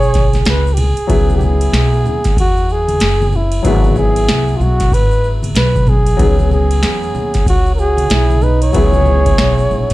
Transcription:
Already playing: B1 G#4 C#5
0.02 shaker
0.14 kick, snare, ride, shaker
0.33 snare, ride, high conga, shaker
0.45 C#2 B4, snare, hi-hat pedal, ride, shaker
0.67 shaker
0.74 G4, ride
0.78 G#4, low conga, shaker
0.97 muted upright bass stroke, ride, shaker
1.07 C#2 F#3 B3 E4, kick, ride, shaker
1.12 G#4
1.30 high conga, shaker
1.37 G4, high conga, low conga, shaker
1.44 G#4
1.61 ride, shaker
1.73 B1, snare, hi-hat pedal, ride, shaker
1.93 shaker
2.04 D#2, low conga, shaker
2.24 kick, snare, ride, shaker
2.36 E2 F#4, kick, ride, shaker
2.57 shaker
2.69 G#4, shaker
2.88 ride, high conga, shaker
3.00 F#1, snare, hi-hat pedal, ride, shaker
3.22 high conga, shaker
3.32 E4, low conga, shaker
3.52 ride, shaker
3.62 G#1 F#3 B3 E4, kick, ride, shaker
3.67 F#4 G#4
3.84 high conga, shaker
3.96 G#4, high conga, low conga, shaker
4.16 ride, shaker
4.28 C2, snare, hi-hat pedal, ride, shaker
4.48 shaker
4.57 B1 F4, low conga, shaker
4.62 F#4
4.80 kick, snare, ride, shaker
4.92 G#1 B4, kick, ride, shaker
5.11 shaker
5.24 shaker
5.43 ride, high conga, shaker
5.55 B1 B4, snare, hi-hat pedal, ride, shaker
5.76 kick, high conga, shaker
5.87 G#4, kick, low conga, shaker
6.06 ride, shaker
6.17 C#2 F#3 B3 D#4, kick, ride, shaker
6.22 G#4
6.26 C#4
6.39 high conga, shaker
6.51 G#4, high conga, low conga, shaker
6.71 ride, shaker
6.83 E2, snare, hi-hat pedal, ride, shaker
7.03 shaker
7.15 D#2, low conga, shaker
7.34 kick, snare, ride, shaker
7.46 C#2 F#4, kick, ride, shaker
7.66 shaker
7.75 F#4 A#4, shaker
7.79 G#4
7.98 ride, high conga, shaker
8.10 B1 E4, snare, hi-hat pedal, ride, shaker
8.30 high conga, shaker
8.42 D#4 B4, low conga, shaker
8.62 C#5, ride, shaker
8.73 C#2 F#3 B3 E4 G#4, kick, ride, shaker
8.78 G#4
8.93 high conga, shaker
9.06 high conga, low conga, shaker
9.26 kick, ride, shaker
9.38 B1, snare, hi-hat pedal, ride, shaker
9.58 shaker
9.71 A#1, low conga, shaker
9.90 ride

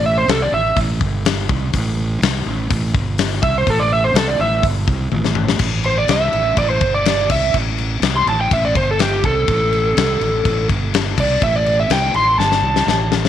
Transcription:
Already playing: A1
0.06 E5
0.18 C5
0.28 C2 A4, snare, open hi-hat
0.42 D5
0.52 A1 E5
0.76 A1, kick, open hi-hat
1.01 G1, kick
1.25 snare, open hi-hat
1.49 C2, kick
1.73 A1, kick, open hi-hat
2.22 C2, snare, open hi-hat
2.46 A1
2.70 A1, kick, open hi-hat
2.94 G1, kick
3.18 snare, open hi-hat
3.43 C2 E5, kick
3.58 C5
3.67 A1 A4, kick, open hi-hat
3.80 D5
3.93 E5
4.04 C5
4.14 C2 A4, snare, open hi-hat
4.28 D5
4.39 A1 E5
4.63 G1, kick, open hi-hat
4.87 C2, kick
5.12 A1, high tom
5.24 snare
5.35 mid tom
5.48 snare
5.59 A1, kick, crash
5.84 C5, crash
5.98 D5
6.08 C2 E5, snare, crash
6.33 A1, crash
6.57 A1 D5, kick, crash
6.70 C5
6.81 G1, kick, crash
6.94 D5
7.05 snare, crash
7.30 C2 E5, kick, crash
7.54 A1, kick, crash
7.78 crash
8.02 C2, snare, crash
8.16 C6
8.26 A1 A5, crash
8.41 G5
8.51 A1 E5, kick, crash
8.65 D5
8.75 G1 C5, kick, crash
8.91 A4
8.99 G4, snare, crash
9.24 C2 A4, kick, crash
9.48 A1, kick, crash
9.73 crash
9.97 C2, snare, crash
10.20 A1, crash
10.45 A1, kick, crash
10.69 G1, kick, crash
10.94 snare, crash
11.18 C2 D5, kick, crash
11.42 A1 E5, kick, crash
11.56 D5
11.66 crash
11.80 E5
11.90 C2 G5, snare, crash
12.14 A1 C6, crash
12.38 G1 A5, snare
12.52 snare
12.62 C2
12.76 snare
12.87 A1, snare
13.12 snare
13.25 snare

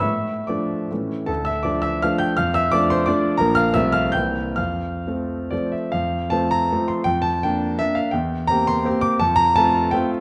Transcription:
0.00 A2 E5 E6
0.47 F3 A3 D4 D5 D6
0.91 A2 E3 A3 C#4
1.26 D2 A4 A5
1.45 E5 E6
1.63 F3 A3 D4 D5 D6
1.82 E5 E6
2.02 F3 A3 D4 F5 F6
2.18 G5 G6
2.37 F2 F5 F6
2.54 E5 E6
2.72 F3 A3 D4 D5 D6
2.90 C5 C6
3.06 F3 A3 D4 D5 D6
3.37 A#1 F3 A#3 D4 A#4 A#5
3.55 F5 F6
3.74 C2 F3 A3 C4 E5 E6
3.92 F5 F6
4.12 C2 E3 A#3 C4 G5 G6
4.56 F2 F5 F6
5.07 F3 A3 C4
5.50 F3 A3 C4 D5
5.72 E5
5.92 F2 F5
6.30 F3 A3 C4 A5
6.51 A#5
6.72 F3 A3 C4
6.88 C6
7.04 F2 G5
7.22 A5
7.43 A#3 D4 G5
7.79 A#3 D4 E5
7.95 F5
8.11 E2 G5
8.47 A#3 C4 G4 A#5
8.67 C6
8.85 A#3 C4 G4
9.01 D6
9.20 F2 A5
9.36 A#5
9.56 A3 C4 F4 A5
9.91 A3 C4 F4 G5

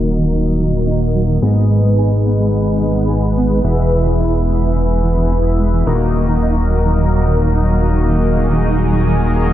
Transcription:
Already playing: D#1 D#3 F#3 A#3 D#4 F#4 A#4 D#5
0.04 F#3
0.17 D#3
0.31 D#3
0.59 D#3
0.73 D#3
0.87 D#4
1.15 F#3
1.28 D#3
1.42 G#1 G#2 G#3 B3 D#4 G#4 B4 D#5
1.70 G#3
1.84 G#3
1.98 G#4
2.26 B3
2.40 G#3
2.53 G#3
2.81 G#3
2.95 G#3
3.09 G#4
3.37 B3
3.51 G#3
3.65 E1 E3 B3 E4 G#4 B4 E5
3.92 E3
4.06 E3
4.20 E4
4.48 G#3
4.62 E3
4.76 E3
5.04 E3
5.17 E3
5.31 E4
5.59 G#3
5.73 E3
5.87 D#1 D#3 F#3 A#3 D#4 F#4 A#4 D#5
6.15 D#3
6.29 D#3
6.42 D#4
6.70 F#3
6.84 D#3
6.98 D#3
7.26 D#3
7.40 D#3
7.54 D#4
7.81 F#3
7.95 D#3
8.09 D#3 G#4
8.37 D#3
8.51 D#3
8.65 D#4
8.92 F#3
9.06 D#3
9.20 D#3
9.48 D#3

